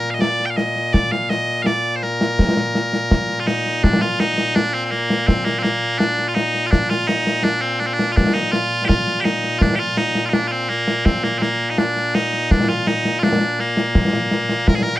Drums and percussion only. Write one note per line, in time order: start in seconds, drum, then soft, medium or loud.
0.22 snare loud
0.40 snare soft
0.58 snare medium
0.76 snare soft
0.94 concert bass drum soft
0.94 snare medium
1.12 snare medium
1.30 snare medium
1.67 snare medium
2.03 snare soft
2.21 snare medium
2.39 concert bass drum medium
2.39 snare medium
2.57 snare medium
2.75 snare medium
2.93 snare medium
3.11 concert bass drum medium
3.11 snare medium
3.30 snare soft
3.48 snare medium
3.66 snare soft
3.84 concert bass drum medium
3.84 snare loud
4.02 snare medium
4.20 snare medium
4.38 snare medium
4.56 snare loud
4.92 snare soft
5.10 snare medium
5.28 concert bass drum medium
5.28 snare medium
5.46 snare medium
5.64 snare medium
6.00 snare medium
6.18 snare soft
6.37 snare medium
6.55 snare soft
6.73 concert bass drum soft
6.73 snare medium
6.91 snare medium
7.09 snare medium
7.27 snare medium
7.45 snare medium
7.81 snare soft
7.99 snare medium
8.17 concert bass drum medium
8.17 snare medium
8.35 snare medium
8.53 snare medium
8.89 concert bass drum medium
8.89 snare medium
9.07 snare soft
9.25 snare medium
9.44 snare soft
9.61 concert bass drum medium
9.61 snare medium
9.97 snare medium
10.15 snare medium
10.33 snare loud
10.70 snare soft
10.88 snare medium
11.06 concert bass drum soft
11.06 snare medium
11.24 snare medium
11.42 snare medium
11.78 snare loud
11.96 snare soft
12.15 snare medium
12.33 snare soft
12.51 concert bass drum medium
12.51 snare medium
12.69 snare medium
12.87 snare medium
13.05 snare medium
13.23 snare loud
13.59 snare soft
13.77 snare medium
13.95 concert bass drum medium
13.95 snare medium
14.13 snare medium
14.31 snare medium
14.49 snare medium
14.68 concert bass drum medium
14.68 snare loud
14.86 snare soft